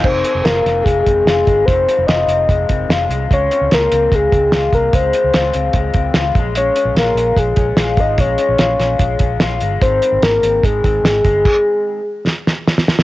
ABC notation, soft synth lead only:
X:1
M:4/4
L:1/8
Q:1/4=147
K:Fm
V:1 name="Soft synth lead"
c2 B2 A A3 | c2 e4 z2 | d2 B2 A3 B | c6 z2 |
d2 B2 A3 e | d6 z2 | c2 B2 A4- | A6 z2 |]